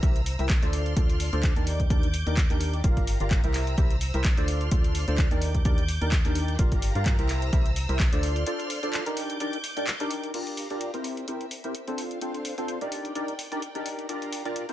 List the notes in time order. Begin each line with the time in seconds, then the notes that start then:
Already playing: C5 A#5 E6
0.03 C2 E4 G4 A#4 C5 E5, kick, closed hi-hat
0.16 closed hi-hat
0.26 open hi-hat
0.39 C2 E4 G4 A#4 C5 E5, closed hi-hat
0.50 kick, clap, closed hi-hat
0.62 D2 D4 F4 A4 C5 D5, closed hi-hat
0.73 D5 C6 F6, open hi-hat
0.86 closed hi-hat
0.96 D2 D4 F4 A4 C5 D5, kick, closed hi-hat
1.09 closed hi-hat
1.20 open hi-hat
1.33 D2 D4 F4 A4 C5 D5, closed hi-hat
1.43 kick, clap, closed hi-hat
1.56 D#2 D4 D#4 G4 A#4 D5, closed hi-hat
1.67 D6 G6, open hi-hat
1.80 kick, closed hi-hat
1.90 D#2 D4 D#4 G4 A#4 D5, kick, closed hi-hat
2.03 closed hi-hat
2.14 open hi-hat
2.27 D#2 D4 D#4 G4 A#4 D5, closed hi-hat
2.37 kick, clap, closed hi-hat
2.50 D#2 D4 D#4 G4 A#4 D5, closed hi-hat
2.61 open hi-hat
2.73 closed hi-hat
2.84 G1 F4 G4 A#4 D5 F5 A#5, kick, closed hi-hat
2.97 kick, closed hi-hat
3.07 open hi-hat
3.20 G1 F4 G4 A#4 D5 F5, closed hi-hat
3.31 kick, clap, closed hi-hat
3.44 C2 E4 G4 A#4 C5 E5, closed hi-hat
3.54 C5 E6, clap, open hi-hat
3.67 closed hi-hat
3.78 C2 E4 G4 A#4 C5 E5, kick, closed hi-hat
3.91 closed hi-hat
4.01 open hi-hat
4.14 C2 E4 G4 A#4 C5 E5, closed hi-hat
4.24 kick, clap, closed hi-hat
4.37 D2 D4 F4 A4 C5 D5, closed hi-hat
4.48 D5 C6 F6, open hi-hat
4.61 closed hi-hat
4.71 D2 D4 F4 A4 C5 D5, kick, closed hi-hat
4.84 closed hi-hat
4.95 open hi-hat
5.08 D2 D4 F4 A4 C5 D5, closed hi-hat
5.18 kick, clap, closed hi-hat
5.31 D#2 D4 D#4 G4 A#4 D5, closed hi-hat
5.42 D6 G6, open hi-hat
5.55 kick, closed hi-hat
5.65 D#2 D4 D#4 G4 A#4 D5, kick, closed hi-hat
5.78 closed hi-hat
5.88 open hi-hat
6.01 D#2 D4 D#4 G4 A#4 D5, closed hi-hat
6.12 kick, clap, closed hi-hat
6.25 D#2 D4 D#4 G4 A#4 D5, closed hi-hat
6.35 open hi-hat
6.48 closed hi-hat
6.59 G1 F4 G4 A#4 D5 F5 A#5, kick, closed hi-hat
6.72 kick, closed hi-hat
6.82 open hi-hat
6.95 G2 F4 G4 A#4 D5 F5, closed hi-hat
7.06 kick, clap, closed hi-hat
7.19 C2 E4 G4 A#4 C5 E5, closed hi-hat
7.29 C5 E6, clap, open hi-hat
7.42 closed hi-hat
7.53 C2 E4 G4 A#4 C5 E5, kick, closed hi-hat
7.66 closed hi-hat
7.76 open hi-hat
7.89 C2 E4 G4 A#4 C5 E5, closed hi-hat
8.00 kick, clap, closed hi-hat
8.12 D2 D4 F4 A4 C5 D5, closed hi-hat
8.23 D5 C6 F6, open hi-hat
8.36 closed hi-hat
8.46 D4 F4 A4 C5 D5, closed hi-hat
8.60 closed hi-hat
8.70 open hi-hat
8.83 D4 F4 A4 C5 D5, closed hi-hat
8.93 clap, closed hi-hat
9.06 D4 D#4 G4 A#4 D5, closed hi-hat
9.17 D6 G6, open hi-hat
9.30 closed hi-hat
9.40 D4 D#4 G4 A#4 D5, closed hi-hat
9.53 closed hi-hat
9.64 open hi-hat
9.77 D4 D#4 G4 A#4 D5, closed hi-hat
9.87 clap, closed hi-hat
10.00 D4 D#4 G4 A#4 D5, closed hi-hat
10.11 open hi-hat
10.23 closed hi-hat
10.34 D4 F4 G4 A#4 D5 F5 A#5, closed hi-hat, crash
10.47 closed hi-hat
10.57 open hi-hat
10.70 D4 F4 G4 A#4 D5, closed hi-hat
10.81 closed hi-hat
10.94 C4 E4 G4 A#4 C5, closed hi-hat
11.04 C4 A#4 E5, open hi-hat
11.17 closed hi-hat
11.28 C4 E4 G4 A#4 C5, closed hi-hat
11.41 closed hi-hat
11.51 open hi-hat
11.64 C4 E4 G4 A#4 C5, closed hi-hat
11.75 closed hi-hat
11.88 C4 D4 F4 A4 C5, closed hi-hat
11.98 D4 C5 F5, open hi-hat
12.11 closed hi-hat
12.21 C4 D4 F4 A4 C5, closed hi-hat
12.34 closed hi-hat
12.45 open hi-hat
12.58 C4 D4 F4 A4 C5, closed hi-hat
12.68 closed hi-hat
12.81 D4 D#4 G4 A#4 D5, closed hi-hat
12.92 D5 G5, open hi-hat
13.05 closed hi-hat
13.15 D4 D#4 G4 A#4 D5, closed hi-hat
13.28 closed hi-hat
13.39 open hi-hat
13.52 D4 D#4 G4 A#4 D5, closed hi-hat
13.62 closed hi-hat
13.75 D4 D#4 G4 A#4 D5, closed hi-hat
13.86 open hi-hat
13.99 closed hi-hat
14.09 D4 F4 G4 A#4 D5 F5 A#5, closed hi-hat
14.22 closed hi-hat
14.32 open hi-hat
14.45 D4 F4 G4 A#4 D5, closed hi-hat
14.56 D5, closed hi-hat
14.69 C4 E4 G4 A#4 C5, closed hi-hat